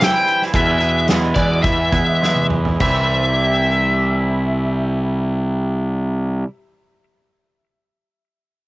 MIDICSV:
0, 0, Header, 1, 5, 480
1, 0, Start_track
1, 0, Key_signature, 0, "major"
1, 0, Tempo, 539084
1, 469, Time_signature, 4, 2, 24, 8
1, 954, Tempo, 567108
1, 1914, Tempo, 603015
1, 7064, End_track
2, 0, Start_track
2, 0, Title_t, "Lead electric guitar"
2, 0, Program_c, 0, 29
2, 31, Note_on_c, 0, 79, 96
2, 368, Note_off_c, 0, 79, 0
2, 495, Note_on_c, 0, 76, 80
2, 934, Note_off_c, 0, 76, 0
2, 1187, Note_on_c, 0, 74, 69
2, 1421, Note_off_c, 0, 74, 0
2, 1424, Note_on_c, 0, 76, 90
2, 2115, Note_off_c, 0, 76, 0
2, 2395, Note_on_c, 0, 76, 65
2, 5278, Note_off_c, 0, 76, 0
2, 7064, End_track
3, 0, Start_track
3, 0, Title_t, "Clean electric guitar"
3, 0, Program_c, 1, 27
3, 3, Note_on_c, 1, 52, 67
3, 9, Note_on_c, 1, 55, 60
3, 17, Note_on_c, 1, 60, 72
3, 25, Note_on_c, 1, 64, 83
3, 462, Note_off_c, 1, 55, 0
3, 466, Note_off_c, 1, 60, 0
3, 478, Note_on_c, 1, 40, 73
3, 481, Note_on_c, 1, 47, 79
3, 485, Note_off_c, 1, 52, 0
3, 488, Note_on_c, 1, 52, 92
3, 489, Note_on_c, 1, 56, 85
3, 496, Note_off_c, 1, 64, 0
3, 497, Note_on_c, 1, 59, 86
3, 499, Note_on_c, 1, 64, 84
3, 708, Note_off_c, 1, 64, 0
3, 713, Note_off_c, 1, 59, 0
3, 719, Note_on_c, 1, 64, 61
3, 721, Note_off_c, 1, 56, 0
3, 723, Note_on_c, 1, 59, 56
3, 730, Note_off_c, 1, 52, 0
3, 731, Note_on_c, 1, 56, 49
3, 740, Note_on_c, 1, 52, 51
3, 959, Note_off_c, 1, 40, 0
3, 960, Note_off_c, 1, 47, 0
3, 968, Note_on_c, 1, 40, 69
3, 969, Note_off_c, 1, 52, 0
3, 973, Note_off_c, 1, 56, 0
3, 975, Note_on_c, 1, 47, 68
3, 977, Note_off_c, 1, 59, 0
3, 979, Note_off_c, 1, 64, 0
3, 980, Note_on_c, 1, 52, 73
3, 984, Note_on_c, 1, 56, 76
3, 988, Note_on_c, 1, 59, 88
3, 989, Note_on_c, 1, 64, 74
3, 1197, Note_off_c, 1, 64, 0
3, 1204, Note_off_c, 1, 59, 0
3, 1208, Note_on_c, 1, 64, 56
3, 1210, Note_off_c, 1, 56, 0
3, 1213, Note_off_c, 1, 52, 0
3, 1214, Note_on_c, 1, 59, 57
3, 1220, Note_on_c, 1, 56, 54
3, 1223, Note_on_c, 1, 52, 46
3, 1434, Note_off_c, 1, 40, 0
3, 1438, Note_off_c, 1, 47, 0
3, 1664, Note_off_c, 1, 64, 0
3, 1667, Note_off_c, 1, 59, 0
3, 1674, Note_on_c, 1, 64, 71
3, 1676, Note_off_c, 1, 56, 0
3, 1678, Note_on_c, 1, 59, 67
3, 1683, Note_off_c, 1, 52, 0
3, 1686, Note_on_c, 1, 56, 55
3, 1694, Note_on_c, 1, 52, 45
3, 1907, Note_off_c, 1, 52, 0
3, 1913, Note_off_c, 1, 56, 0
3, 1917, Note_on_c, 1, 52, 65
3, 1919, Note_off_c, 1, 59, 0
3, 1923, Note_on_c, 1, 56, 66
3, 1925, Note_off_c, 1, 64, 0
3, 1928, Note_on_c, 1, 59, 67
3, 1935, Note_on_c, 1, 64, 66
3, 2373, Note_off_c, 1, 52, 0
3, 2377, Note_off_c, 1, 56, 0
3, 2379, Note_off_c, 1, 59, 0
3, 2383, Note_off_c, 1, 64, 0
3, 2390, Note_on_c, 1, 48, 70
3, 2397, Note_on_c, 1, 52, 71
3, 2403, Note_on_c, 1, 55, 82
3, 2414, Note_on_c, 1, 60, 80
3, 2418, Note_on_c, 1, 64, 74
3, 5305, Note_off_c, 1, 48, 0
3, 5312, Note_off_c, 1, 52, 0
3, 5319, Note_off_c, 1, 55, 0
3, 5329, Note_off_c, 1, 60, 0
3, 5333, Note_off_c, 1, 64, 0
3, 7064, End_track
4, 0, Start_track
4, 0, Title_t, "Picked electric bass"
4, 0, Program_c, 2, 34
4, 482, Note_on_c, 2, 40, 90
4, 1162, Note_off_c, 2, 40, 0
4, 1199, Note_on_c, 2, 40, 73
4, 1413, Note_off_c, 2, 40, 0
4, 1436, Note_on_c, 2, 40, 76
4, 1654, Note_off_c, 2, 40, 0
4, 1677, Note_on_c, 2, 40, 73
4, 2359, Note_off_c, 2, 40, 0
4, 2390, Note_on_c, 2, 36, 76
4, 5273, Note_off_c, 2, 36, 0
4, 7064, End_track
5, 0, Start_track
5, 0, Title_t, "Drums"
5, 7, Note_on_c, 9, 42, 91
5, 18, Note_on_c, 9, 38, 110
5, 96, Note_off_c, 9, 42, 0
5, 107, Note_off_c, 9, 38, 0
5, 243, Note_on_c, 9, 42, 51
5, 332, Note_off_c, 9, 42, 0
5, 373, Note_on_c, 9, 38, 29
5, 462, Note_off_c, 9, 38, 0
5, 474, Note_on_c, 9, 42, 73
5, 478, Note_on_c, 9, 36, 106
5, 563, Note_off_c, 9, 42, 0
5, 567, Note_off_c, 9, 36, 0
5, 713, Note_on_c, 9, 42, 50
5, 802, Note_off_c, 9, 42, 0
5, 959, Note_on_c, 9, 42, 68
5, 969, Note_on_c, 9, 38, 95
5, 1044, Note_off_c, 9, 42, 0
5, 1054, Note_off_c, 9, 38, 0
5, 1191, Note_on_c, 9, 42, 52
5, 1198, Note_on_c, 9, 36, 75
5, 1275, Note_off_c, 9, 42, 0
5, 1282, Note_off_c, 9, 36, 0
5, 1437, Note_on_c, 9, 36, 102
5, 1437, Note_on_c, 9, 42, 62
5, 1521, Note_off_c, 9, 42, 0
5, 1522, Note_off_c, 9, 36, 0
5, 1674, Note_on_c, 9, 42, 45
5, 1677, Note_on_c, 9, 36, 70
5, 1758, Note_off_c, 9, 42, 0
5, 1762, Note_off_c, 9, 36, 0
5, 1933, Note_on_c, 9, 38, 58
5, 2013, Note_off_c, 9, 38, 0
5, 2034, Note_on_c, 9, 48, 46
5, 2113, Note_off_c, 9, 48, 0
5, 2150, Note_on_c, 9, 45, 67
5, 2230, Note_off_c, 9, 45, 0
5, 2269, Note_on_c, 9, 43, 62
5, 2349, Note_off_c, 9, 43, 0
5, 2388, Note_on_c, 9, 49, 72
5, 2391, Note_on_c, 9, 36, 84
5, 2467, Note_off_c, 9, 49, 0
5, 2470, Note_off_c, 9, 36, 0
5, 7064, End_track
0, 0, End_of_file